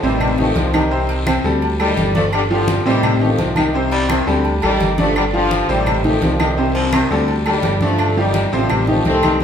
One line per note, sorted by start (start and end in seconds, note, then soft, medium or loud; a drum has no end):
0.03 0.52 A1 loud
0.03 0.32 C3 medium
0.03 0.39 D#3 medium
0.03 0.38 G3 loud
0.03 0.32 C4 medium
0.03 0.32 C5 loud
0.03 short guiro medium
0.20 high conga soft
0.20 low conga medium
0.20 low agogo loud
0.20 long guiro medium
0.20 claves medium
0.38 0.67 D#3 medium
0.38 0.56 F3 medium
0.38 0.55 A3 medium
0.38 0.67 D#4 medium
0.38 0.68 G4 medium
0.38 high conga soft
0.38 low conga medium
0.56 1.39 C2 loud
0.56 0.74 C3 medium
0.56 0.74 F3 loud
0.56 high conga loud
0.56 low timbale medium
0.56 low agogo medium
0.56 short guiro medium
0.73 1.24 C3 medium
0.73 0.88 D#3 medium
0.73 1.24 D#3 medium
0.73 0.88 D#4 medium
0.73 0.88 G4 medium
0.73 high conga medium
0.73 low agogo loud
0.73 short guiro medium
0.73 claves medium
0.91 1.20 C3 medium
0.91 1.20 C4 medium
0.91 1.20 C5 medium
0.91 high conga soft
0.91 long guiro medium
1.09 high conga soft
1.09 low agogo medium
1.26 1.41 C3 medium
1.26 1.41 C4 medium
1.26 1.41 C5 medium
1.26 high conga loud
1.26 low agogo loud
1.26 short guiro medium
1.26 claves medium
1.44 1.94 D2 medium
1.44 1.73 G3 medium
1.44 1.73 G4 medium
1.44 1.73 A4 medium
1.44 high conga soft
1.44 short guiro medium
1.62 high conga soft
1.62 low agogo loud
1.62 long guiro medium
1.80 2.14 D#3 medium
1.80 2.09 G3 medium
1.80 2.13 G3 loud
1.80 2.09 G4 medium
1.80 2.09 A4 medium
1.80 high conga soft
1.80 low agogo loud
1.80 claves medium
1.97 2.80 G1 loud
1.97 high conga loud
1.97 low agogo medium
1.97 short guiro medium
2.15 2.44 D3 loud
2.15 2.25 F3 medium
2.15 2.24 A3 loud
2.15 2.44 D4 medium
2.15 2.44 D5 loud
2.15 high conga loud
2.15 short guiro medium
2.33 2.42 D3 medium
2.33 2.41 G3 loud
2.33 high conga soft
2.33 low agogo loud
2.33 long guiro medium
2.33 claves medium
2.50 2.84 D3 medium
2.50 2.79 F3 medium
2.50 2.84 F3 loud
2.50 2.80 F4 medium
2.50 2.80 G4 medium
2.50 high conga soft
2.68 high conga loud
2.68 low agogo medium
2.68 short guiro medium
2.85 3.35 A1 loud
2.85 3.15 C3 loud
2.85 3.19 D#3 medium
2.85 3.19 G3 loud
2.85 3.15 C4 loud
2.85 3.15 C5 loud
2.85 short guiro medium
3.03 high conga soft
3.03 low conga medium
3.03 low agogo loud
3.03 long guiro medium
3.03 claves medium
3.21 3.50 D#3 medium
3.21 3.38 F3 medium
3.21 3.39 A3 medium
3.21 3.50 D#4 medium
3.21 3.50 G4 medium
3.21 high conga soft
3.38 4.21 C2 loud
3.38 3.57 C3 medium
3.38 3.57 F3 medium
3.38 high conga medium
3.38 low agogo medium
3.38 short guiro medium
3.56 4.07 C3 medium
3.56 3.71 D#3 medium
3.56 4.06 D#3 medium
3.56 3.71 D#4 medium
3.56 3.72 G4 medium
3.56 high conga medium
3.56 low agogo loud
3.56 short guiro medium
3.56 claves medium
3.74 4.03 C3 medium
3.74 4.04 C4 medium
3.74 4.04 C5 medium
3.74 high conga soft
3.74 long guiro medium
3.91 4.11 G3 loud
3.91 high conga soft
3.91 low agogo medium
4.09 4.24 C3 medium
4.09 4.29 D#3 loud
4.09 4.24 C4 medium
4.09 4.25 C5 medium
4.09 high conga loud
4.09 low agogo loud
4.09 short guiro medium
4.09 claves medium
4.27 4.60 D2 loud
4.27 4.54 D3 medium
4.27 4.56 G3 medium
4.27 4.56 G4 medium
4.27 4.56 A4 medium
4.27 high conga soft
4.27 short guiro medium
4.45 high conga soft
4.45 low agogo medium
4.45 long guiro medium
4.62 4.79 A1 medium
4.62 4.96 D#3 medium
4.62 4.92 G3 medium
4.62 4.96 G3 loud
4.62 4.92 G4 medium
4.62 4.92 A4 medium
4.62 high conga soft
4.62 low agogo loud
4.62 claves medium
4.80 5.63 G1 loud
4.80 high conga medium
4.80 low agogo medium
4.80 short guiro medium
4.98 5.27 D3 loud
4.98 5.17 F3 medium
4.98 5.16 A3 loud
4.98 5.27 D4 medium
4.98 5.27 D5 loud
4.98 high conga medium
4.98 short guiro medium
5.16 5.25 D3 medium
5.16 5.24 G3 loud
5.16 high conga soft
5.16 low agogo loud
5.16 long guiro medium
5.16 claves medium
5.33 5.67 D3 medium
5.33 5.62 F3 medium
5.33 5.67 F3 loud
5.33 5.62 F4 medium
5.33 5.63 G4 medium
5.33 high conga soft
5.51 high conga medium
5.51 low agogo medium
5.51 short guiro medium
5.69 6.18 A1 medium
5.69 5.98 C3 medium
5.69 6.03 D#3 medium
5.69 6.02 G3 loud
5.69 5.98 C4 loud
5.69 5.98 C5 medium
5.69 short guiro medium
5.86 high conga soft
5.86 low conga medium
5.86 low agogo loud
5.86 long guiro medium
5.86 claves medium
6.04 6.33 D#3 medium
6.04 6.22 F3 medium
6.04 6.21 A3 loud
6.04 6.33 D#4 medium
6.04 6.34 G4 medium
6.04 high conga soft
6.04 low conga medium
6.22 7.05 C2 loud
6.22 6.40 C3 medium
6.22 6.39 F3 medium
6.22 high conga medium
6.22 low timbale medium
6.22 low agogo medium
6.22 short guiro medium
6.39 6.91 C3 medium
6.39 6.54 D#3 medium
6.39 6.90 D#3 medium
6.39 6.54 D#4 medium
6.39 6.54 G4 medium
6.39 high conga medium
6.39 low agogo loud
6.39 short guiro medium
6.39 claves medium
6.57 6.86 C3 medium
6.57 6.87 C4 medium
6.57 6.87 C5 medium
6.57 high conga soft
6.57 long guiro medium
6.75 6.94 F3 loud
6.75 high conga soft
6.75 low agogo medium
6.93 7.08 C3 medium
6.93 7.12 D#3 loud
6.93 7.08 C4 medium
6.93 7.08 C5 medium
6.93 high conga medium
6.93 low agogo loud
6.93 short guiro medium
6.93 claves medium
7.10 7.60 D2 loud
7.10 7.37 D3 medium
7.10 7.40 G3 medium
7.10 7.40 G4 medium
7.10 7.40 A4 medium
7.10 high conga soft
7.10 short guiro medium
7.28 high conga soft
7.28 low agogo medium
7.28 long guiro medium
7.46 7.80 D#3 medium
7.46 7.75 G3 medium
7.46 7.80 G3 medium
7.46 7.75 G4 medium
7.46 7.75 A4 medium
7.46 high conga soft
7.46 low agogo loud
7.46 claves medium
7.63 8.46 G1 loud
7.63 high conga medium
7.63 low timbale medium
7.63 low agogo medium
7.63 short guiro medium
7.81 8.11 D3 medium
7.81 8.15 F3 medium
7.81 8.15 A3 loud
7.81 8.11 D4 loud
7.81 8.11 D5 medium
7.81 high conga medium
7.81 short guiro medium
7.98 high conga soft
7.98 low agogo loud
7.98 long guiro medium
7.98 claves medium
8.16 8.51 D#3 medium
8.16 8.46 F3 medium
8.16 8.50 G3 loud
8.16 8.46 F4 medium
8.16 8.46 G4 medium
8.16 high conga soft
8.34 high conga medium
8.34 low agogo medium
8.34 short guiro medium
8.52 9.01 A1 medium
8.52 8.81 C3 loud
8.52 8.71 D3 medium
8.52 8.71 F3 medium
8.52 8.81 C4 loud
8.52 8.82 C5 loud
8.52 short guiro medium
8.70 8.89 D#3 medium
8.70 8.88 G3 loud
8.70 high conga soft
8.70 low conga medium
8.70 low agogo loud
8.70 long guiro medium
8.70 claves medium
8.87 9.17 D#3 medium
8.87 9.06 F3 medium
8.87 9.06 A3 loud
8.87 9.17 D#4 medium
8.87 9.17 G4 medium
8.87 high conga soft
8.87 low conga medium
9.05 9.44 C2 loud
9.05 9.39 A3 medium
9.05 9.39 C4 loud
9.05 high conga medium
9.05 low agogo medium
9.05 short guiro medium
9.23 9.38 D#3 medium
9.23 9.38 D#4 medium
9.23 9.38 G4 medium
9.23 high conga medium
9.23 low agogo loud
9.23 short guiro medium
9.23 claves medium
9.40 high conga medium
9.40 long guiro medium